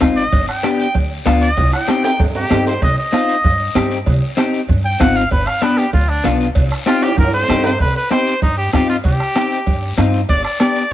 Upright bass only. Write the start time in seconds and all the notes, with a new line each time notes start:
0.02 G#1
0.33 G1
0.95 D2
1.27 D2
1.58 C2
2.20 G2
2.51 G2
2.82 C2
3.45 G2
3.75 G2
4.07 C2
4.69 G2
5.00 G#1
5.32 G1
5.94 D2
6.25 B1
6.56 C2
7.18 G2
7.50 G2
7.80 C2
8.43 G2
8.74 G2
9.05 C2
9.67 G2
9.98 G2
10.29 G1